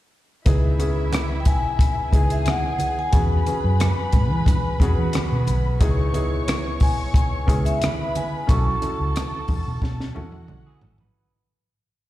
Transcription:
0.45 fingered electric bass C#2, grand piano B3 D#4 E4 G#4, string section E4 E5, kick, closed hi-hat, muted conga
0.79 grand piano B3 C#4 E4 G#4, closed hi-hat, muted conga
1.13 cross-stick, closed hi-hat, high conga
1.40 vibraphone G5
1.45 fingered electric bass B1, vibraphone G#5, kick, closed hi-hat
1.79 kick, closed hi-hat
2.12 fingered electric bass C#2, grand piano B3 D#4 E4 G#4, string section G#4 G#5, kick, cross-stick, closed hi-hat, muted conga
2.30 vibraphone E5, closed hi-hat
2.46 vibraphone F#5, cross-stick, closed hi-hat, high conga
2.79 closed hi-hat, high conga
2.99 vibraphone G#5
3.12 fingered electric bass E2, grand piano B3 C#4 F#4 G#4, string section B4 B5, kick, closed hi-hat, muted conga
3.46 grand piano B3 C#4 F#4 G#4, closed hi-hat, muted conga
3.64 fingered electric bass F#2
3.80 cross-stick, closed hi-hat, high conga
4.12 fingered electric bass G#2, kick, closed hi-hat, low conga
4.31 fingered electric bass E3
4.46 kick, closed hi-hat, low conga
4.80 fingered electric bass E2, grand piano B3 C#4 F#4 G#4, kick, cross-stick, closed hi-hat, muted conga, low conga
4.98 fingered electric bass E3
5.13 cross-stick, closed hi-hat, high conga
5.32 fingered electric bass B2
5.47 fingered electric bass B1, closed hi-hat, high conga
5.80 fingered electric bass C#2, grand piano B3 D#4 E4 G#4, string section C#5 C#6, kick, closed hi-hat, muted conga
6.13 grand piano B3 D#4 E4 G#4, closed hi-hat, muted conga
6.48 cross-stick, closed hi-hat, high conga
6.80 fingered electric bass B1, vibraphone G#5, kick, open hi-hat
7.14 kick, closed hi-hat
7.46 fingered electric bass C#2, grand piano B3 C#4 E4 G#4, kick, closed hi-hat
7.65 vibraphone E5, closed hi-hat
7.82 string section B4 B5, cross-stick, closed hi-hat, high conga
8.15 vibraphone G#5, closed hi-hat, high conga
8.47 fingered electric bass B1, grand piano C#4 E4 F#4 A4, string section A5, vibraphone C#6, kick, closed hi-hat
8.51 string section A4, muted conga
8.81 grand piano C#4 E4 F#4 A4, closed hi-hat, muted conga
9.00 fingered electric bass C#2
9.16 cross-stick, closed hi-hat, high conga
9.48 fingered electric bass E2, kick, open hi-hat, low conga
9.67 fingered electric bass B2
9.82 fingered electric bass B2, kick, snare, low conga
10.00 snare
10.14 fingered electric bass E2, grand piano C#4 E4 F#4 A4, string section F#4 F#5, low conga
10.32 high tom
10.48 fingered electric bass B1, mid tom, high conga
10.66 clean electric guitar B3 G#4
10.81 fingered electric bass A1, clean electric guitar C#4 A4, floor tom, high conga
10.98 clean electric guitar D#4 B4, floor tom

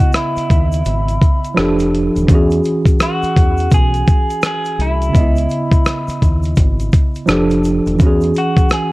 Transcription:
Already playing: tine electric piano C#3 B3 E4 D#5, clean electric guitar F#4
0.00 closed hi-hat, shaker
0.13 clean electric guitar E4, cross-stick, closed hi-hat, shaker
0.37 muted fingered electric bass stroke, closed hi-hat, shaker
0.50 fingered electric bass D#2, kick, closed hi-hat, shaker
0.72 closed hi-hat, shaker
0.85 fingered electric bass G#1, closed hi-hat, shaker
1.08 closed hi-hat, shaker
1.22 kick, closed hi-hat, shaker
1.44 closed hi-hat, shaker
1.54 fingered electric bass F1, tine electric piano F3 D4 G4, cross-stick, closed hi-hat, shaker
1.61 tine electric piano A4
1.79 closed hi-hat, shaker
1.95 closed hi-hat
2.16 fingered electric bass D#1, closed hi-hat, shaker
2.23 tine electric piano E3
2.27 fingered electric bass E2, tine electric piano C#4 F#4, kick, closed hi-hat, shaker
2.35 tine electric piano G#4
2.51 closed hi-hat, shaker
2.64 closed hi-hat, shaker
2.85 kick, closed hi-hat, shaker
3.00 clean electric guitar F#4, cross-stick, closed hi-hat, shaker
3.22 muted fingered electric bass stroke, closed hi-hat, shaker
3.36 fingered electric bass E2, kick, closed hi-hat, shaker
3.57 closed hi-hat, shaker
3.71 fingered electric bass B1, clean electric guitar G#4, kick, closed hi-hat, shaker
3.94 closed hi-hat, shaker
4.07 kick, closed hi-hat, shaker
4.30 closed hi-hat, shaker
4.42 cross-stick, closed hi-hat, shaker
4.46 clean electric guitar G#4
4.65 closed hi-hat, shaker
4.79 fingered electric bass C2, clean electric guitar E4, closed hi-hat
5.02 closed hi-hat, shaker
5.09 tine electric piano C#3
5.13 fingered electric bass C#2, tine electric piano B3 D#5, kick, closed hi-hat, shaker
5.21 tine electric piano E4
5.36 closed hi-hat, shaker
5.49 closed hi-hat, shaker
5.72 kick, closed hi-hat, shaker
5.85 cross-stick, closed hi-hat, shaker
6.08 muted fingered electric bass stroke, closed hi-hat, shaker
6.22 fingered electric bass D#2, kick, closed hi-hat, shaker
6.43 closed hi-hat, shaker
6.56 fingered electric bass G#1, kick, closed hi-hat, shaker
6.80 closed hi-hat, shaker
6.93 kick, closed hi-hat, shaker
7.15 closed hi-hat, shaker
7.26 fingered electric bass F1, tine electric piano F3 D4, cross-stick, closed hi-hat, shaker
7.30 tine electric piano G4 A4
7.50 closed hi-hat, shaker
7.64 closed hi-hat, shaker
7.86 fingered electric bass D#1, closed hi-hat, shaker
7.95 tine electric piano E3 C#4
7.99 fingered electric bass E2, tine electric piano F#4, kick, closed hi-hat, shaker
8.06 tine electric piano G#4
8.21 closed hi-hat, shaker
8.34 clean electric guitar F#4, closed hi-hat, shaker
8.57 kick, closed hi-hat, shaker
8.69 clean electric guitar G#4, cross-stick, closed hi-hat, shaker

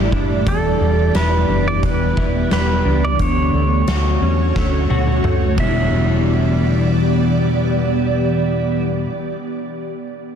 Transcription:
Already playing: clean electric guitar A2 E3 G3 D4 E4, ambient pad A3 E4 G4 D5
0.12 fingered electric bass F#1, clean electric guitar D4, kick
0.47 fingered electric bass E1, clean electric guitar E2, ambient pad E3 B3, pedal steel guitar A4, kick, closed hi-hat
0.81 fingered electric bass E1, clean electric guitar G3
1.15 fingered electric bass E1, clean electric guitar E4, pedal steel guitar B4, snare, closed hi-hat
1.49 fingered electric bass F#1, clean electric guitar D4
1.68 pedal steel guitar D5
1.83 fingered electric bass E1, clean electric guitar E3, pedal steel guitar B4, kick, closed hi-hat
2.17 fingered electric bass E1, clean electric guitar E4, kick
2.51 fingered electric bass E1, clean electric guitar G3, pedal steel guitar B4, snare, closed hi-hat
2.85 fingered electric bass C#2, clean electric guitar D4
3.04 pedal steel guitar D5
3.19 fingered electric bass D2, ambient pad D3 A3 F#4 C#5, clean electric guitar D3, pedal steel guitar C#5, kick, closed hi-hat
3.54 fingered electric bass D2, clean electric guitar A3
3.87 fingered electric bass D2, clean electric guitar F#4, snare, closed hi-hat
4.21 fingered electric bass E2, clean electric guitar C#4
4.56 clean electric guitar A3, kick, snare
4.90 fingered electric bass D2, clean electric guitar F#4, high tom
5.07 high tom
5.24 fingered electric bass D2, clean electric guitar A3, mid tom
5.55 clean electric guitar E2 B2, ambient pad E3 B3 G4 D5, kick, ride
5.60 clean electric guitar E3 G3, pedal steel guitar E5
5.64 clean electric guitar D4 E4

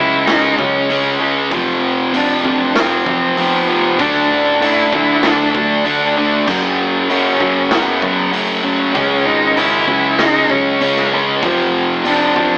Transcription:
Already playing: fingered electric bass C#2, distorted electric guitar C#3 G#3 C#4, cello E4
0.26 distorted electric guitar C#3 G#3 C#4, cello D#4, snare, open hi-hat
0.59 fingered electric bass C#2, cello C#4, kick
0.90 distorted electric guitar C#3 G#3 C#4, open hi-hat
1.20 distorted electric guitar C#3 G#3 C#4
1.51 fingered electric bass F2, distorted electric guitar F2 C3 F3, kick, open hi-hat
2.13 distorted electric guitar F2 C3 F3, cello D4, open hi-hat
2.44 distorted electric guitar F2 C3 F3, fingered electric bass F2, cello D4, kick
2.75 distorted electric guitar F2 C3 F3, cello C4, snare, open hi-hat
3.06 fingered electric bass F3, kick
3.37 distorted electric guitar F2 C3 F3, cello B3, open hi-hat
3.68 distorted electric guitar F2 C3 F3
3.99 fingered electric bass D2, distorted electric guitar D3 A3 D4, cello D4, kick, open hi-hat
4.31 fingered electric bass A1
4.61 distorted electric guitar D3 A3 D4, cello E4, open hi-hat
4.93 fingered electric bass D2, distorted electric guitar D3 A3 D4, cello E4, kick
5.23 distorted electric guitar D3 A3 D4, cello D4, snare, open hi-hat
5.55 fingered electric bass D2, cello D4, kick
5.85 distorted electric guitar D3 A3 D4, open hi-hat
6.17 distorted electric guitar D3 A3 D4
6.47 distorted electric guitar F#2 C#3 F#3, fingered electric bass F#2, kick, crash
7.10 distorted electric guitar F#2 C#3 F#3, cello C#4, open hi-hat
7.40 fingered electric bass F#2, distorted electric guitar F#2 C#3 F#3, kick
7.71 distorted electric guitar F#2 C#3 F#3, cello B3, snare, open hi-hat
8.02 fingered electric bass F#3, kick
8.33 distorted electric guitar F#2 C#3 F#3, cello A3, open hi-hat
8.64 distorted electric guitar F#2 C#3 F#3
8.94 fingered electric bass C#2, distorted electric guitar C#3 G#3 C#4, cello C#4, kick, open hi-hat
9.26 fingered electric bass G#1, cello D#4
9.57 distorted electric guitar C#3 G#3 C#4, cello E4, open hi-hat
9.87 fingered electric bass C#2, distorted electric guitar C#3 G#3 C#4, kick
10.19 distorted electric guitar C#3 G#3 C#4, cello D#4, snare, open hi-hat
10.50 fingered electric bass C#2, cello C#4, kick
10.81 distorted electric guitar C#3 G#3 C#4, open hi-hat
10.97 snare
11.13 distorted electric guitar C#3 G#3 C#4
11.43 fingered electric bass F2, distorted electric guitar F2 C3 F3, kick, open hi-hat
12.05 distorted electric guitar F2 C3 F3, cello D4, open hi-hat
12.36 fingered electric bass F2, distorted electric guitar F2 C3 F3, kick

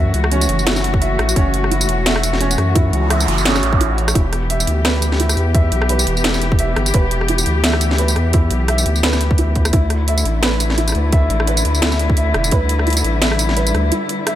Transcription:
Already playing: sub bass F#2, cello section E3 A3 F#4, felt piano C#4 E4 E5
0.14 sub bass C#2, closed hi-hat
0.24 cross-stick
0.32 felt piano C#4, closed hi-hat
0.41 tambourine
0.49 sub bass F#1, closed hi-hat
0.59 tambourine
0.67 felt piano E4, cross-stick, snare, closed hi-hat
0.76 snare, tambourine
0.84 closed hi-hat
0.94 kick
1.01 felt piano E5, closed hi-hat
1.19 sub bass A1, cross-stick, closed hi-hat
1.29 tambourine
1.36 sub bass F#1, felt piano C#4, kick, closed hi-hat
1.54 closed hi-hat
1.64 cross-stick
1.71 felt piano E4, closed hi-hat
1.81 tambourine
1.88 sub bass E1, closed hi-hat
2.06 felt piano E5, snare, closed hi-hat
2.16 cross-stick
2.23 closed hi-hat, tambourine
2.33 snare
2.41 felt piano C#4, closed hi-hat
2.51 tambourine
2.58 sub bass F#2, cross-stick, closed hi-hat
2.75 felt piano E4, kick, closed hi-hat, noise sweep
2.93 sub bass C#2, closed hi-hat
3.10 felt piano E5, cross-stick, closed hi-hat
3.20 tambourine
3.28 sub bass F#1, closed hi-hat
3.38 tambourine
3.45 felt piano C#4, snare, closed hi-hat
3.55 cross-stick, snare, tambourine
3.63 sub bass A1, closed hi-hat
3.73 kick
3.81 felt piano E4, closed hi-hat
3.98 closed hi-hat
4.08 cross-stick, tambourine
4.15 sub bass E1, cello section E3 B3 G4, felt piano E4, kick, closed hi-hat
4.33 cross-stick, closed hi-hat
4.50 felt piano E5, closed hi-hat
4.60 tambourine
4.67 sub bass D2, closed hi-hat
4.85 felt piano B4, cross-stick, snare, closed hi-hat
5.02 closed hi-hat, tambourine
5.12 snare
5.20 felt piano E4, closed hi-hat
5.29 cross-stick, tambourine
5.37 sub bass E2, closed hi-hat
5.55 felt piano E5, kick, closed hi-hat
5.72 sub bass B1, closed hi-hat
5.82 cross-stick
5.89 felt piano B4, closed hi-hat
5.99 tambourine
6.07 sub bass E1, closed hi-hat
6.17 tambourine
6.24 felt piano E4, cross-stick, snare, closed hi-hat
6.34 snare, tambourine
6.42 closed hi-hat
6.52 kick
6.59 felt piano E5, closed hi-hat
6.76 sub bass G1, cross-stick, closed hi-hat
6.86 tambourine
6.94 sub bass E1, felt piano B4, kick, closed hi-hat
7.11 closed hi-hat
7.21 cross-stick
7.28 felt piano E4, closed hi-hat
7.38 tambourine
7.46 sub bass D2, closed hi-hat
7.64 felt piano E5, snare, closed hi-hat
7.73 cross-stick
7.81 closed hi-hat, tambourine
7.91 snare
7.98 felt piano B4, closed hi-hat
8.08 tambourine
8.16 sub bass E2, cross-stick, closed hi-hat
8.33 felt piano E4, kick, closed hi-hat
8.51 sub bass B1, closed hi-hat
8.68 felt piano E5, cross-stick, closed hi-hat
8.78 tambourine
8.86 sub bass D2, closed hi-hat
8.96 tambourine
9.03 felt piano B4, snare, closed hi-hat
9.13 cross-stick, snare, tambourine
9.21 closed hi-hat
9.31 kick
9.38 felt piano E4, closed hi-hat
9.55 kick, closed hi-hat
9.65 cross-stick, tambourine
9.73 sub bass D2, cello section D3 A3 E4, felt piano E4, kick, closed hi-hat
9.90 cross-stick, closed hi-hat
10.08 felt piano E5, closed hi-hat
10.18 tambourine
10.25 sub bass A1, closed hi-hat
10.43 felt piano B4, cross-stick, snare, closed hi-hat
10.60 closed hi-hat, tambourine
10.70 snare
10.78 felt piano E4, closed hi-hat
10.88 cross-stick, tambourine
10.89 cross-stick
10.92 sub bass D2, cross-stick, closed hi-hat
11.12 felt piano E5, kick, closed hi-hat
11.30 sub bass A1, closed hi-hat
11.40 cross-stick
11.47 felt piano B4, closed hi-hat
11.57 tambourine
11.65 sub bass D2, closed hi-hat
11.75 tambourine
11.82 felt piano E4, cross-stick, snare, closed hi-hat
11.92 snare, tambourine
11.99 closed hi-hat
12.10 kick
12.17 felt piano E5, closed hi-hat
12.34 sub bass E1, cross-stick, closed hi-hat
12.44 tambourine
12.51 sub bass D2, cello section G3, felt piano B4, kick, closed hi-hat
12.69 closed hi-hat
12.79 cross-stick
12.87 felt piano E4, closed hi-hat
12.90 closed hi-hat
12.93 closed hi-hat
12.97 tambourine
13.04 sub bass A1, closed hi-hat
13.22 felt piano E5, snare, closed hi-hat
13.32 cross-stick
13.39 closed hi-hat, tambourine
13.49 snare
13.57 felt piano B4, closed hi-hat
13.67 tambourine
13.74 sub bass D2, cross-stick, closed hi-hat
13.92 felt piano E4, closed hi-hat
14.09 closed hi-hat
14.27 felt piano E5, cross-stick, closed hi-hat

